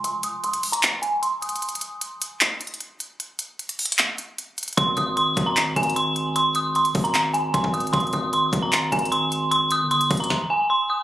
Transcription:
0.04 0.23 C6 loud
0.04 closed hi-hat medium
0.23 0.42 D#6 medium
0.23 closed hi-hat medium
0.44 0.72 C6 medium
0.44 closed hi-hat soft
0.54 closed hi-hat medium
0.63 closed hi-hat medium
0.63 open hi-hat medium
0.72 0.82 A#5 medium
0.72 closed hi-hat medium
0.83 clap loud
0.83 closed hi-hat medium
1.02 1.21 G#5 medium
1.02 closed hi-hat medium
1.22 1.41 C6 medium
1.22 closed hi-hat medium
1.42 1.61 D#6 medium
1.42 closed hi-hat medium
1.49 closed hi-hat medium
1.56 closed hi-hat medium
1.62 closed hi-hat medium
1.69 closed hi-hat medium
1.75 closed hi-hat medium
1.81 closed hi-hat medium
2.01 closed hi-hat medium
2.22 closed hi-hat medium
2.41 clap loud
2.41 closed hi-hat medium
2.61 closed hi-hat medium
2.67 closed hi-hat medium
2.74 closed hi-hat soft
2.81 closed hi-hat medium
3.00 closed hi-hat medium
3.20 closed hi-hat medium
3.39 closed hi-hat medium
3.59 closed hi-hat soft
3.69 closed hi-hat medium
3.79 closed hi-hat medium
3.79 open hi-hat medium
3.86 closed hi-hat medium
3.92 closed hi-hat medium
3.98 clap loud
3.98 closed hi-hat medium
4.18 closed hi-hat medium
4.38 closed hi-hat medium
4.58 closed hi-hat medium
4.63 closed hi-hat medium
4.68 closed hi-hat medium
4.73 closed hi-hat soft
4.77 4.97 G#1 loud
4.77 4.96 C6 loud
4.77 kick loud
4.77 closed hi-hat medium
4.97 5.35 G#1 loud
4.97 5.16 D#6 medium
4.97 closed hi-hat medium
5.17 5.45 C6 medium
5.17 closed hi-hat medium
5.37 5.75 G#1 loud
5.37 kick loud
5.37 closed hi-hat medium
5.46 5.74 A#5 medium
5.56 clap loud
5.56 closed hi-hat medium
5.76 6.91 G#1 loud
5.76 5.95 G#5 medium
5.76 closed hi-hat medium
5.83 closed hi-hat medium
5.90 closed hi-hat soft
5.96 6.33 C6 medium
5.96 closed hi-hat medium
6.16 closed hi-hat medium
6.36 6.54 C6 loud
6.36 closed hi-hat medium
6.55 6.74 D#6 medium
6.55 closed hi-hat medium
6.75 7.03 C6 medium
6.75 closed hi-hat soft
6.85 closed hi-hat medium
6.95 7.52 G#1 loud
6.95 kick medium
6.95 closed hi-hat medium
6.95 open hi-hat medium
7.04 7.14 A#5 medium
7.04 closed hi-hat medium
7.14 clap loud
7.14 closed hi-hat medium
7.33 7.52 G#5 medium
7.33 closed hi-hat medium
7.54 7.64 G#1 loud
7.54 7.72 C6 medium
7.54 kick medium
7.54 closed hi-hat medium
7.64 7.92 G#1 loud
7.64 kick loud
7.74 7.92 D#6 medium
7.74 closed hi-hat medium
7.80 closed hi-hat medium
7.87 closed hi-hat medium
7.93 8.12 G#1 loud
7.93 8.12 C6 loud
7.93 kick loud
7.93 closed hi-hat medium
8.00 closed hi-hat medium
8.07 closed hi-hat medium
8.13 8.51 G#1 loud
8.13 8.32 D#6 medium
8.13 closed hi-hat medium
8.33 8.61 C6 medium
8.33 closed hi-hat medium
8.53 8.91 G#1 loud
8.53 kick medium
8.53 closed hi-hat medium
8.63 8.90 A#5 medium
8.72 clap loud
8.72 closed hi-hat medium
8.92 9.83 G#1 loud
8.92 9.11 G#5 medium
8.92 closed hi-hat medium
8.99 closed hi-hat medium
9.05 closed hi-hat soft
9.12 9.49 C6 medium
9.12 closed hi-hat medium
9.32 closed hi-hat medium
9.51 9.70 C6 medium
9.51 closed hi-hat medium
9.71 9.90 D#6 medium
9.71 closed hi-hat medium
9.81 10.09 G1 loud
9.91 10.19 C6 medium
9.91 closed hi-hat soft
10.01 closed hi-hat medium
10.11 10.30 G#1 loud
10.11 kick medium
10.11 closed hi-hat medium
10.11 open hi-hat medium
10.17 10.30 A#5 medium
10.17 closed hi-hat medium
10.24 closed hi-hat medium
10.30 kick loud
10.30 snare medium
10.50 10.69 G#5 medium
10.70 10.88 C6 medium
10.90 11.03 D#6 medium

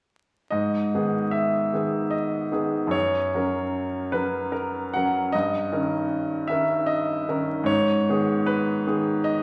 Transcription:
0.50 0.92 G#2 soft
0.50 1.33 D#5 medium
0.95 1.70 D#3 soft
0.95 1.70 B3 soft
0.95 1.71 G#4 soft
1.31 2.12 E5 medium
1.73 2.49 D#3 soft
1.73 2.50 B3 soft
1.73 2.50 G#4 soft
2.10 2.93 D#5 medium
2.52 2.89 D#3 soft
2.52 2.90 B3 soft
2.52 2.90 G#4 soft
2.87 3.30 F#2 soft
2.91 4.13 C#5 medium
3.34 4.10 F#3 soft
3.34 4.11 C#4 soft
3.34 4.11 A#4 soft
4.12 4.90 F#3 soft
4.12 4.90 C#4 soft
4.12 4.50 A#4 soft
4.12 4.53 B4 medium
4.52 4.93 A#4 medium
4.93 5.30 F#3 soft
4.93 5.30 C#4 soft
4.93 5.31 A#4 soft
4.93 5.33 F#5 medium
5.32 5.72 G2 soft
5.32 6.50 D#5 medium
5.73 6.46 D#3 soft
5.73 6.47 C#4 soft
5.73 6.47 A#4 soft
6.47 7.25 D#3 soft
6.47 7.26 C#4 soft
6.47 7.25 A#4 soft
6.47 6.88 E5 medium
6.86 7.67 D#5 medium
7.29 7.65 D#3 soft
7.29 7.65 C#4 soft
7.29 7.65 A#4 soft
7.64 8.05 G#2 medium
7.64 8.47 C#5 medium
8.09 8.84 D#3 soft
8.09 8.84 B3 soft
8.09 8.84 G#4 soft
8.46 9.26 B4 medium
8.87 9.43 D#3 soft
8.87 9.43 B3 soft
8.87 9.43 G#4 soft
9.24 9.43 D#5 medium

